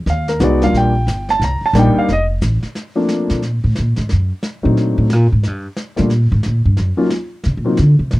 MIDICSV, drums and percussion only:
0, 0, Header, 1, 2, 480
1, 0, Start_track
1, 0, Key_signature, -2, "major"
1, 0, Tempo, 335008
1, 100, Time_signature, 4, 2, 24, 8
1, 11745, End_track
2, 0, Start_track
2, 0, Title_t, "Drums"
2, 102, Note_on_c, 9, 25, 39
2, 102, Note_on_c, 9, 38, 42
2, 245, Note_off_c, 9, 38, 0
2, 401, Note_on_c, 9, 38, 44
2, 544, Note_off_c, 9, 38, 0
2, 568, Note_on_c, 9, 44, 53
2, 575, Note_on_c, 9, 38, 63
2, 711, Note_off_c, 9, 44, 0
2, 718, Note_off_c, 9, 38, 0
2, 883, Note_on_c, 9, 38, 45
2, 1027, Note_off_c, 9, 38, 0
2, 1063, Note_off_c, 9, 25, 0
2, 1063, Note_on_c, 9, 25, 49
2, 1063, Note_on_c, 9, 38, 39
2, 1206, Note_off_c, 9, 38, 0
2, 1539, Note_on_c, 9, 44, 48
2, 1546, Note_on_c, 9, 38, 58
2, 1682, Note_off_c, 9, 44, 0
2, 1690, Note_off_c, 9, 38, 0
2, 1843, Note_on_c, 9, 38, 36
2, 1986, Note_off_c, 9, 38, 0
2, 2025, Note_off_c, 9, 25, 0
2, 2025, Note_on_c, 9, 25, 53
2, 2025, Note_on_c, 9, 38, 43
2, 2169, Note_off_c, 9, 38, 0
2, 2497, Note_on_c, 9, 44, 49
2, 2504, Note_on_c, 9, 38, 65
2, 2641, Note_off_c, 9, 44, 0
2, 2648, Note_off_c, 9, 38, 0
2, 2987, Note_off_c, 9, 25, 0
2, 2987, Note_on_c, 9, 25, 47
2, 2987, Note_on_c, 9, 38, 43
2, 3131, Note_off_c, 9, 38, 0
2, 3460, Note_on_c, 9, 44, 57
2, 3467, Note_on_c, 9, 38, 55
2, 3603, Note_off_c, 9, 44, 0
2, 3610, Note_off_c, 9, 38, 0
2, 3762, Note_on_c, 9, 38, 34
2, 3905, Note_off_c, 9, 38, 0
2, 3943, Note_off_c, 9, 25, 0
2, 3943, Note_on_c, 9, 25, 41
2, 3943, Note_on_c, 9, 38, 44
2, 4087, Note_off_c, 9, 38, 0
2, 4421, Note_on_c, 9, 38, 54
2, 4565, Note_off_c, 9, 38, 0
2, 4722, Note_on_c, 9, 38, 42
2, 4865, Note_off_c, 9, 38, 0
2, 4904, Note_off_c, 9, 25, 0
2, 4904, Note_on_c, 9, 25, 42
2, 4904, Note_on_c, 9, 38, 41
2, 5047, Note_off_c, 9, 38, 0
2, 5379, Note_on_c, 9, 38, 46
2, 5522, Note_off_c, 9, 38, 0
2, 5677, Note_on_c, 9, 38, 37
2, 5821, Note_off_c, 9, 38, 0
2, 5860, Note_off_c, 9, 25, 0
2, 5860, Note_on_c, 9, 25, 43
2, 5860, Note_on_c, 9, 38, 39
2, 6004, Note_off_c, 9, 38, 0
2, 6343, Note_on_c, 9, 38, 59
2, 6486, Note_off_c, 9, 38, 0
2, 6835, Note_off_c, 9, 25, 0
2, 6835, Note_on_c, 9, 25, 40
2, 6835, Note_on_c, 9, 38, 40
2, 6978, Note_off_c, 9, 38, 0
2, 7305, Note_on_c, 9, 38, 57
2, 7449, Note_off_c, 9, 38, 0
2, 7786, Note_off_c, 9, 25, 0
2, 7786, Note_on_c, 9, 25, 55
2, 7786, Note_on_c, 9, 38, 42
2, 7929, Note_off_c, 9, 38, 0
2, 8261, Note_on_c, 9, 38, 55
2, 8404, Note_off_c, 9, 38, 0
2, 8555, Note_on_c, 9, 38, 46
2, 8698, Note_off_c, 9, 38, 0
2, 8738, Note_off_c, 9, 25, 0
2, 8738, Note_on_c, 9, 25, 49
2, 8738, Note_on_c, 9, 38, 42
2, 8881, Note_off_c, 9, 38, 0
2, 9213, Note_on_c, 9, 38, 49
2, 9357, Note_off_c, 9, 38, 0
2, 9698, Note_off_c, 9, 25, 0
2, 9698, Note_on_c, 9, 25, 44
2, 9698, Note_on_c, 9, 38, 38
2, 9841, Note_off_c, 9, 38, 0
2, 10178, Note_on_c, 9, 38, 61
2, 10322, Note_off_c, 9, 38, 0
2, 10654, Note_off_c, 9, 25, 0
2, 10654, Note_on_c, 9, 25, 39
2, 10654, Note_on_c, 9, 38, 43
2, 10797, Note_off_c, 9, 38, 0
2, 11135, Note_on_c, 9, 38, 58
2, 11278, Note_off_c, 9, 38, 0
2, 11617, Note_off_c, 9, 25, 0
2, 11617, Note_on_c, 9, 25, 45
2, 11617, Note_on_c, 9, 38, 45
2, 11745, Note_off_c, 9, 25, 0
2, 11745, Note_off_c, 9, 38, 0
2, 11745, End_track
0, 0, End_of_file